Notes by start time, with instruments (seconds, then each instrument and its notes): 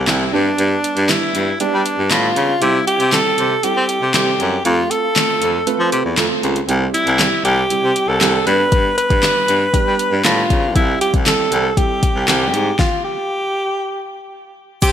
0.07 baritone saxophone C2, grand piano G3 C4 E4 G4, alto saxophone E4, snare, clap
0.33 baritone saxophone G2, grand piano G3 B3 D4 G4, alto saxophone D4
0.58 baritone saxophone G2, closed hi-hat
0.84 closed hi-hat
0.97 baritone saxophone G2, closed hi-hat
1.09 grand piano G3 B3 D4 E4, alto saxophone E4, snare, clap, closed hi-hat
1.35 baritone saxophone G2, closed hi-hat
1.60 grand piano G3 B3 D4 G4, baritone saxophone G3, alto saxophone D4, closed hi-hat
1.73 baritone saxophone G3
1.86 closed hi-hat
1.98 baritone saxophone G2
2.11 baritone saxophone A2, grand piano G3 B3 D4 G4, alto saxophone F4, snare, clap, closed hi-hat
2.36 baritone saxophone C#3, closed hi-hat
2.62 baritone saxophone C3, grand piano G3 C4 E4 G4, alto saxophone E4, closed hi-hat
2.87 alto saxophone G4, closed hi-hat
3.00 baritone saxophone C3, closed hi-hat
3.12 grand piano G3 C4 E4 G4, alto saxophone A4, snare, clap, closed hi-hat
3.38 baritone saxophone C3, closed hi-hat
3.63 grand piano G3 C4 E4 A4, baritone saxophone C4, alto saxophone G4, closed hi-hat
3.76 baritone saxophone C4
3.89 closed hi-hat
4.02 baritone saxophone C3
4.14 baritone saxophone C3, grand piano G3 C4 E4 A4, alto saxophone G4, snare, clap, closed hi-hat
4.40 baritone saxophone F#2, closed hi-hat
4.65 baritone saxophone F2, grand piano A3 C4 F4 A4, alto saxophone F4, closed hi-hat
4.91 alto saxophone A4, closed hi-hat
5.16 grand piano A3 C4 F4 A4, snare, clap, closed hi-hat
5.42 baritone saxophone F2, closed hi-hat
5.67 grand piano A3 C4 F4 B4, closed hi-hat
5.80 baritone saxophone F3
5.92 baritone saxophone C3, closed hi-hat
6.05 baritone saxophone E2
6.17 baritone saxophone F2, grand piano A3 C4 F4 A4, snare, clap, closed hi-hat
6.43 baritone saxophone C#2, closed hi-hat
6.56 closed hi-hat
6.68 baritone saxophone C2, grand piano G3 C4 E4 G4, closed hi-hat
6.94 alto saxophone E4, closed hi-hat
7.07 baritone saxophone C2, closed hi-hat
7.19 grand piano G3 C4 E4 G4, snare, clap, closed hi-hat
7.45 baritone saxophone C2, alto saxophone G4, closed hi-hat
7.70 baritone saxophone C3, grand piano G3 C4 E4 G4, closed hi-hat
7.83 baritone saxophone C3
7.96 closed hi-hat
8.08 baritone saxophone C2, alto saxophone A4
8.21 baritone saxophone C2, grand piano G3 C4 E4 G4, snare, clap, closed hi-hat
8.46 baritone saxophone G2, grand piano G3 B3 D4 G4, alto saxophone B4, closed hi-hat
8.72 baritone saxophone G2, kick, closed hi-hat
8.97 alto saxophone B4, closed hi-hat
9.10 baritone saxophone G2, kick, closed hi-hat
9.23 grand piano G3 B3 D4 G4, snare, clap, closed hi-hat
9.48 baritone saxophone G2, closed hi-hat
9.73 grand piano G3 B3 D4 G4, baritone saxophone G3, kick, closed hi-hat
9.86 baritone saxophone G3
9.99 closed hi-hat
10.12 baritone saxophone G2
10.24 baritone saxophone A2, grand piano G3 B3 D4 G4, alto saxophone F4, snare, clap, closed hi-hat
10.50 baritone saxophone C#3, kick, closed hi-hat
10.75 baritone saxophone C2, grand piano G3 C4 E4 G4, alto saxophone E4, kick, closed hi-hat
11.01 alto saxophone G4, closed hi-hat
11.14 baritone saxophone C2, kick, closed hi-hat
11.26 grand piano G3 C4 E4 A4, alto saxophone A4, snare, clap, closed hi-hat
11.52 baritone saxophone C2, closed hi-hat
11.77 baritone saxophone C3, grand piano G3 C4 E4 G4, alto saxophone G4, kick, closed hi-hat
12.03 kick, closed hi-hat
12.15 baritone saxophone C2
12.28 baritone saxophone C2, grand piano G3 C4 E4 G4, alto saxophone G4, snare, clap, closed hi-hat
12.54 baritone saxophone G#2, closed hi-hat
12.79 alto saxophone F4, kick, snare
13.04 alto saxophone G4
14.82 baritone saxophone C3, alto saxophone G4, kick, closed hi-hat, crash, impact, shaker